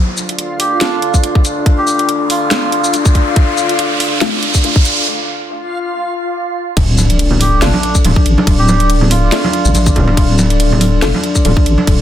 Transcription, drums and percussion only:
0.17 shaker
0.29 closed hi-hat
0.39 closed hi-hat
0.60 open hi-hat
0.81 snare, closed hi-hat
1.02 closed hi-hat
1.14 kick, shaker
1.24 closed hi-hat
1.35 kick
1.45 closed hi-hat, shaker
1.66 kick, closed hi-hat
1.87 shaker
1.99 closed hi-hat
2.09 closed hi-hat
2.30 open hi-hat
2.51 snare, closed hi-hat
2.72 closed hi-hat
2.84 shaker
2.94 closed hi-hat, shaker
3.06 kick, shaker
3.15 kick, closed hi-hat
3.36 kick, closed hi-hat
3.58 shaker
3.69 closed hi-hat
3.79 closed hi-hat
4.00 open hi-hat
4.21 snare, closed hi-hat
4.43 closed hi-hat
4.54 kick, shaker
4.64 closed hi-hat
4.76 kick
4.85 closed hi-hat, shaker
6.77 kick, closed hi-hat, crash
6.98 high conga, shaker
7.10 closed hi-hat
7.19 closed hi-hat, crash
7.31 low conga
7.39 open hi-hat, high conga
7.62 snare, closed hi-hat, crash
7.74 high conga
7.83 closed hi-hat
7.95 kick, shaker
8.05 closed hi-hat, crash, high conga
8.16 kick
8.26 closed hi-hat
8.38 high conga
8.47 kick, closed hi-hat, crash
8.68 high conga, shaker
8.80 closed hi-hat
8.90 closed hi-hat, crash
9.01 low conga
9.10 open hi-hat, high conga
9.32 snare, closed hi-hat, crash
9.44 high conga
9.53 closed hi-hat
9.65 shaker
9.75 closed hi-hat, crash, high conga, shaker
9.87 kick, shaker
9.96 kick, closed hi-hat, low conga
10.07 high conga
10.17 kick, closed hi-hat, crash
10.39 high conga, shaker
10.50 closed hi-hat
10.60 closed hi-hat, crash
10.72 low conga
10.81 open hi-hat, high conga
11.02 snare, closed hi-hat, crash
11.14 high conga
11.24 closed hi-hat
11.35 kick, shaker
11.45 closed hi-hat, crash, high conga
11.57 kick
11.66 closed hi-hat
11.78 high conga
11.87 kick, closed hi-hat, crash

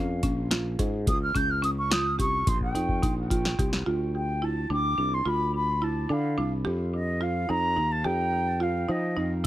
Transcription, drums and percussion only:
0.23 kick, closed hi-hat
0.51 snare, closed hi-hat
0.79 kick, closed hi-hat
1.07 kick, closed hi-hat
1.35 kick, closed hi-hat
1.64 closed hi-hat
1.91 snare, closed hi-hat
2.19 kick, closed hi-hat
2.47 kick, closed hi-hat
2.61 kick
2.75 closed hi-hat
2.89 kick
3.03 kick, closed hi-hat
3.31 kick, closed hi-hat
3.45 snare
3.59 kick, closed hi-hat
3.73 snare

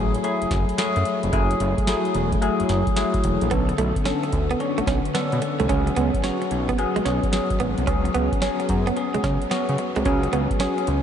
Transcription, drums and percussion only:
0.14 closed hi-hat
0.24 closed hi-hat
0.42 closed hi-hat
0.51 kick, snare, closed hi-hat
0.69 closed hi-hat
0.78 snare, closed hi-hat
0.96 closed hi-hat
1.05 closed hi-hat
1.23 closed hi-hat
1.33 kick, closed hi-hat
1.51 closed hi-hat
1.60 closed hi-hat
1.78 kick, closed hi-hat
1.87 snare, closed hi-hat
2.05 closed hi-hat
2.15 closed hi-hat
2.32 kick, closed hi-hat
2.42 closed hi-hat
2.60 closed hi-hat
2.69 snare, closed hi-hat
2.87 kick, closed hi-hat
2.96 snare, closed hi-hat
3.14 kick, closed hi-hat
3.24 closed hi-hat
3.41 closed hi-hat
3.51 kick, closed hi-hat
3.69 closed hi-hat
3.78 closed hi-hat
3.96 kick, closed hi-hat
4.05 snare, closed hi-hat
4.23 closed hi-hat
4.33 kick, closed hi-hat
4.51 closed hi-hat
4.60 closed hi-hat
4.78 closed hi-hat
4.87 kick, snare, closed hi-hat
5.05 closed hi-hat
5.15 snare, closed hi-hat
5.32 closed hi-hat
5.42 closed hi-hat
5.60 closed hi-hat
5.69 kick, closed hi-hat
5.87 closed hi-hat
5.96 closed hi-hat
6.14 kick, closed hi-hat
6.24 snare, closed hi-hat
6.42 closed hi-hat
6.51 closed hi-hat
6.69 kick, closed hi-hat
6.79 closed hi-hat
6.96 closed hi-hat
7.06 snare, closed hi-hat
7.23 kick, closed hi-hat
7.33 snare, closed hi-hat
7.50 kick, closed hi-hat
7.60 closed hi-hat
7.78 closed hi-hat
7.87 kick, closed hi-hat
8.05 closed hi-hat
8.15 closed hi-hat
8.32 kick, closed hi-hat
8.42 snare, closed hi-hat
8.60 closed hi-hat
8.69 kick, closed hi-hat
8.87 closed hi-hat
8.97 closed hi-hat
9.14 closed hi-hat
9.24 kick, snare, closed hi-hat
9.42 closed hi-hat
9.51 snare, closed hi-hat
9.69 closed hi-hat
9.78 closed hi-hat
9.96 closed hi-hat
10.05 kick, closed hi-hat
10.23 closed hi-hat
10.33 closed hi-hat
10.51 kick, closed hi-hat
10.60 snare, closed hi-hat
10.78 closed hi-hat
10.87 closed hi-hat

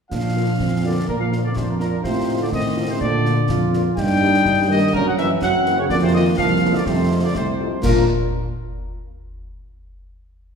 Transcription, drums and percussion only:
0.12 concert bass drum, snare, crash
0.60 concert bass drum, snare
1.09 concert bass drum
1.33 snare
1.56 concert bass drum, snare
1.80 snare
2.04 concert bass drum, snare
2.52 concert bass drum, snare
3.01 concert bass drum
3.25 snare
3.49 concert bass drum, snare
3.73 snare
3.97 concert bass drum, snare, crash
4.45 concert bass drum, snare
4.94 concert bass drum
5.18 snare
5.42 concert bass drum, snare
5.66 snare
5.90 concert bass drum, snare
6.38 concert bass drum, snare
6.86 concert bass drum, snare
7.35 concert bass drum, snare
7.83 concert bass drum, snare, crash

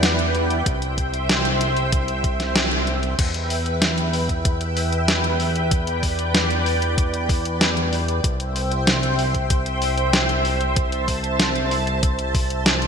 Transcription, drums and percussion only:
0.03 snare, closed hi-hat
0.19 closed hi-hat
0.35 closed hi-hat
0.50 closed hi-hat
0.66 kick, closed hi-hat
0.82 closed hi-hat
0.98 kick, closed hi-hat
1.14 closed hi-hat
1.29 snare, closed hi-hat
1.45 closed hi-hat
1.61 closed hi-hat
1.77 closed hi-hat
1.92 kick, closed hi-hat
2.08 closed hi-hat
2.24 kick, closed hi-hat
2.40 snare, closed hi-hat
2.56 snare, closed hi-hat
2.71 closed hi-hat
2.87 closed hi-hat
3.03 closed hi-hat
3.19 kick, closed hi-hat, crash
3.34 closed hi-hat
3.50 open hi-hat
3.66 closed hi-hat
3.82 snare, closed hi-hat
3.98 closed hi-hat
4.13 open hi-hat
4.29 kick, closed hi-hat
4.45 kick, closed hi-hat
4.61 closed hi-hat
4.77 open hi-hat
4.92 closed hi-hat
5.08 snare, closed hi-hat
5.24 closed hi-hat
5.40 open hi-hat
5.56 closed hi-hat
5.71 kick, closed hi-hat
5.87 closed hi-hat
6.03 kick, open hi-hat
6.19 closed hi-hat
6.35 snare, closed hi-hat
6.50 closed hi-hat
6.66 open hi-hat
6.82 closed hi-hat
6.98 kick, closed hi-hat
7.14 closed hi-hat
7.29 kick, open hi-hat
7.45 closed hi-hat
7.61 snare, closed hi-hat
7.77 closed hi-hat
7.93 open hi-hat
8.08 closed hi-hat
8.24 kick, closed hi-hat
8.40 closed hi-hat
8.56 open hi-hat
8.72 closed hi-hat
8.87 snare, closed hi-hat
9.03 closed hi-hat
9.19 open hi-hat
9.34 kick, closed hi-hat
9.50 kick, closed hi-hat
9.66 closed hi-hat
9.82 open hi-hat
9.98 closed hi-hat
10.13 snare, closed hi-hat
10.29 closed hi-hat
10.45 open hi-hat
10.61 closed hi-hat
10.76 kick, closed hi-hat
10.92 closed hi-hat
11.08 kick, open hi-hat
11.24 closed hi-hat
11.40 snare, closed hi-hat
11.55 closed hi-hat
11.71 open hi-hat
11.87 closed hi-hat
12.03 kick, closed hi-hat
12.19 closed hi-hat
12.35 kick, open hi-hat
12.50 closed hi-hat
12.66 snare, closed hi-hat
12.82 closed hi-hat

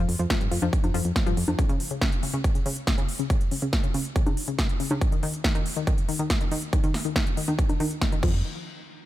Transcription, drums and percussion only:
0.09 open hi-hat
0.19 closed hi-hat
0.30 kick, snare, closed hi-hat
0.41 closed hi-hat
0.52 open hi-hat
0.62 closed hi-hat, high conga
0.73 kick, closed hi-hat
0.84 closed hi-hat, high conga
0.94 open hi-hat
1.05 closed hi-hat
1.16 kick, snare, closed hi-hat
1.27 closed hi-hat
1.37 open hi-hat
1.48 closed hi-hat, high conga
1.59 kick, closed hi-hat
1.69 closed hi-hat
1.80 open hi-hat
1.91 closed hi-hat
2.02 kick, snare, closed hi-hat
2.12 closed hi-hat
2.23 open hi-hat
2.34 closed hi-hat
2.44 kick, closed hi-hat
2.55 closed hi-hat
2.66 open hi-hat
2.77 closed hi-hat
2.87 kick, snare, closed hi-hat
2.98 closed hi-hat
3.09 open hi-hat
3.19 closed hi-hat
3.30 kick, closed hi-hat
3.41 closed hi-hat
3.51 open hi-hat
3.62 closed hi-hat
3.73 kick, snare, closed hi-hat
3.84 closed hi-hat
3.94 open hi-hat
4.05 closed hi-hat
4.16 kick, closed hi-hat
4.26 closed hi-hat, high conga
4.37 open hi-hat
4.48 closed hi-hat
4.59 kick, snare, closed hi-hat
4.69 closed hi-hat
4.80 open hi-hat
4.91 high conga
5.01 kick, closed hi-hat
5.12 closed hi-hat
5.23 open hi-hat
5.34 closed hi-hat
5.44 kick, snare, closed hi-hat
5.55 closed hi-hat
5.66 open hi-hat
5.76 closed hi-hat
5.87 kick, closed hi-hat
5.98 closed hi-hat
6.09 open hi-hat
6.19 closed hi-hat
6.30 kick, snare, closed hi-hat
6.41 closed hi-hat
6.51 open hi-hat
6.62 closed hi-hat
6.73 kick, closed hi-hat
6.84 closed hi-hat
6.94 snare, open hi-hat
7.05 closed hi-hat
7.16 kick, snare, closed hi-hat
7.27 closed hi-hat
7.37 open hi-hat
7.48 closed hi-hat, high conga
7.59 kick, closed hi-hat
7.69 closed hi-hat, high conga
7.80 open hi-hat, high conga
7.91 closed hi-hat
8.01 kick, snare, closed hi-hat
8.12 closed hi-hat
8.23 kick, crash

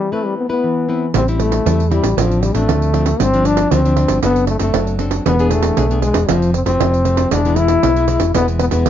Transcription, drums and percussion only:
1.14 pandeiro
1.28 pandeiro
1.40 pandeiro
1.52 pandeiro
1.66 pandeiro
1.80 pandeiro
1.91 pandeiro
2.04 pandeiro
2.18 pandeiro
2.31 pandeiro
2.43 pandeiro
2.55 pandeiro
2.69 pandeiro
2.82 pandeiro
2.94 pandeiro
3.06 pandeiro
3.20 pandeiro
3.34 pandeiro
3.45 pandeiro
3.57 pandeiro
3.71 pandeiro
3.85 pandeiro
3.97 pandeiro
4.08 pandeiro
4.23 pandeiro
4.36 pandeiro
4.47 pandeiro
4.59 pandeiro
4.74 pandeiro
4.87 pandeiro
4.99 pandeiro
5.11 pandeiro
5.26 pandeiro
5.39 pandeiro
5.51 pandeiro
5.63 pandeiro
5.77 pandeiro
5.91 pandeiro
6.02 pandeiro
6.14 pandeiro
6.29 pandeiro
6.42 pandeiro
6.54 pandeiro
6.66 pandeiro
6.80 pandeiro
6.94 pandeiro
7.05 pandeiro
7.17 pandeiro
7.31 pandeiro
7.45 pandeiro
7.56 pandeiro
7.68 pandeiro
7.83 pandeiro
7.96 pandeiro
8.08 pandeiro
8.20 pandeiro
8.34 pandeiro
8.48 pandeiro
8.59 pandeiro
8.71 pandeiro
8.86 pandeiro

